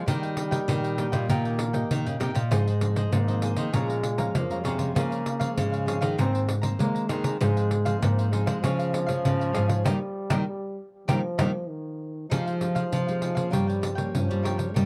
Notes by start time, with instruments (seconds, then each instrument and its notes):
0.06 nylon-string guitar D#3 A#3 D#4 G4, trombone G3, cavaquinho G4 A#4 D#5 G5, pandeiro
0.23 cavaquinho A#4 D#5 G5, pandeiro
0.37 pandeiro
0.51 nylon-string guitar A#3 D#4 G4, cavaquinho A#4 D#5 G5, pandeiro
0.68 nylon-string guitar A#2 D#3, pandeiro
0.84 cavaquinho A#4 D#5 G5, pandeiro
0.98 nylon-string guitar A#3 D#4 G4, cavaquinho G4 A#4 D#5 G5, pandeiro
1.12 nylon-string guitar A#2, cavaquinho A#4 D#5 G5, pandeiro
1.29 nylon-string guitar A#2 D#3 A#3 D#4 G4, trombone A#3, cavaquinho G4 A#4 D#5 G5, pandeiro
1.45 cavaquinho A#4 D#5 G5, pandeiro
1.59 muted cavaquinho stroke, pandeiro
1.73 nylon-string guitar A#3 D#4 G4, cavaquinho A#4 D#5 G5, pandeiro
1.91 nylon-string guitar A#2 D#3, pandeiro
2.05 nylon-string guitar C#3, cavaquinho A#4 D#5 G5, pandeiro
2.20 nylon-string guitar C3 A#3 D#4 G4, cavaquinho G4 A#4 D#5 G5, pandeiro
2.35 nylon-string guitar A#2, cavaquinho A#4 D#5 G5, pandeiro
2.51 nylon-string guitar G#2 F3 C4 D#4, trombone G#3, cavaquinho F4 G#4 C5 D#5, pandeiro
2.67 cavaquinho G#4 C5 D#5, pandeiro
2.81 nylon-string guitar F3 C4 D#4, pandeiro
2.96 cavaquinho G#4 C5 D#5, pandeiro
3.12 nylon-string guitar G#2 D#3, trombone A#3, pandeiro
3.27 nylon-string guitar F3 C4 D#4, cavaquinho G#4 C5 D#5, pandeiro
3.42 cavaquinho F4 G#4 C5 D#5, pandeiro
3.56 nylon-string guitar D#3, cavaquinho G#4 C5 D#5, pandeiro
3.72 nylon-string guitar A#2 F3 G#3 C#4, trombone G#3, cavaquinho G#4 C#5 F5 A#5, pandeiro
3.88 cavaquinho C#5 F5 A#5, pandeiro
4.03 muted cavaquinho stroke, pandeiro
4.18 nylon-string guitar F3 G#3 C#4, cavaquinho C#5 F5 A#5, pandeiro
4.35 nylon-string guitar F2 A#3, trombone F3, pandeiro
4.50 nylon-string guitar F3 G#3 C#4, cavaquinho C#5 F5 A#5, pandeiro
4.64 nylon-string guitar C3, trombone G#3, cavaquinho G#4 C#5 F5 A#5, pandeiro
4.78 nylon-string guitar F3 G#3 C#4, cavaquinho C#5 F5 A#5, pandeiro
4.95 nylon-string guitar C#3, trombone A#3, cavaquinho F4 G#4 C#5 F5, pandeiro
5.10 cavaquinho G#4 C#5 F5, pandeiro
5.26 pandeiro
5.40 nylon-string guitar F3 G#3 C#4, cavaquinho G#4 C#5 F5, pandeiro
5.57 nylon-string guitar G#2 C#3, trombone G#3, pandeiro
5.72 cavaquinho G#4 C#5 F5, pandeiro
5.86 nylon-string guitar F3 G#3 C#4, cavaquinho F4 G#4 C#5 F5, pandeiro
6.01 nylon-string guitar D#3, cavaquinho G#4 C#5 F5, pandeiro
6.18 nylon-string guitar G#2 D#3 A#3 C4, trombone C4, cavaquinho G#4 C5 A#5, pandeiro
6.33 cavaquinho C5 A#5, pandeiro
6.47 muted cavaquinho stroke, pandeiro
6.62 nylon-string guitar D#3 A#3 C4, cavaquinho C5 A#5, pandeiro
6.79 nylon-string guitar D#3 G#3, trombone A#3, pandeiro
6.95 cavaquinho C5 A#5, pandeiro
7.09 nylon-string guitar D#3 A#3 C4, trombone G#3, cavaquinho G#4 C5 A#5, pandeiro
7.24 cavaquinho C5 A#5, pandeiro
7.41 nylon-string guitar G#2 F3 C4 D#4, trombone G#3, cavaquinho D#4 G#4 C5 F5, pandeiro
7.56 cavaquinho G#4 C5 F5, pandeiro
7.71 pandeiro
7.85 nylon-string guitar F3 C4 D#4, cavaquinho G#4 C5 F5, pandeiro
8.01 nylon-string guitar G#2, trombone A#3, pandeiro
8.18 cavaquinho G#4 C5 F5, pandeiro
8.31 nylon-string guitar F3 C4 D#4, trombone G#3, cavaquinho D#4 G#4 C5 F5, pandeiro
8.46 nylon-string guitar G#3, cavaquinho G#4 C5 F5, pandeiro
8.62 nylon-string guitar C#3 F3 G#3 C#4, trombone F3, cavaquinho F4 G#4 C#5 F5, pandeiro
8.79 cavaquinho G#4 C#5 F5, pandeiro
8.93 muted cavaquinho stroke, pandeiro
9.06 nylon-string guitar F3 G#3 C#4, cavaquinho G#4 C#5 F5, pandeiro
9.25 nylon-string guitar G#2 C#3, pandeiro
9.40 cavaquinho G#4 C#5 F5, pandeiro
9.53 nylon-string guitar G#2 F3 G#3 C#4, cavaquinho F4 G#4 C#5 F5, pandeiro
9.68 cavaquinho G#4 C#5 F5, pandeiro
9.84 nylon-string guitar D#3 G3 A#3 D#4, trombone G3, cavaquinho G4 A#4 D#5, pandeiro
10.30 nylon-string guitar D#3 G3 A#3 D#4, cavaquinho G4 A#4 D#5, pandeiro
10.46 trombone G3
11.07 nylon-string guitar D#3 G3 A#3 D#4, trombone F3, cavaquinho G4 A#4 D#5, pandeiro
11.38 nylon-string guitar D#3 G3 A#3 D#4, cavaquinho G4 A#4 D#5, pandeiro
11.69 trombone D#3
12.29 trombone F3, nylon-string guitar F3 G#3 D#4 G4, cavaquinho D#4 G#4 C5 F5, pandeiro
12.46 cavaquinho G#4 C5 F5, pandeiro
12.61 nylon-string guitar G#3 D#4 G4, pandeiro
12.75 cavaquinho G#4 C5 F5, pandeiro
12.92 nylon-string guitar C3 F3, pandeiro
13.07 nylon-string guitar G#3 D#4 G4, cavaquinho G#4 C5 F5, pandeiro
13.21 cavaquinho D#4 G#4 C5 F5, pandeiro
13.35 nylon-string guitar F3 A#3 C#4, cavaquinho G#4 C5 F5, pandeiro
13.51 nylon-string guitar G2 G3, trombone G3, cavaquinho F4 A#4 C#5 G5, pandeiro
13.67 cavaquinho A#4 C#5 G5, pandeiro
13.81 muted cavaquinho stroke, pandeiro
13.95 nylon-string guitar F3 A#3 C#4, cavaquinho A#4 C#5 G5, pandeiro
14.13 nylon-string guitar G2 C#4, trombone F3, pandeiro
14.28 nylon-string guitar F3 G3 A#3 C#4, cavaquinho A#4 C#5 G5, pandeiro
14.43 cavaquinho F4 A#4 C#5 G5, pandeiro
14.57 cavaquinho A#4 C#5 G5, pandeiro
14.74 nylon-string guitar G2 D#3 G3 A#3 C#4, trombone A#3, cavaquinho D#4 G4 C#5 D#5, pandeiro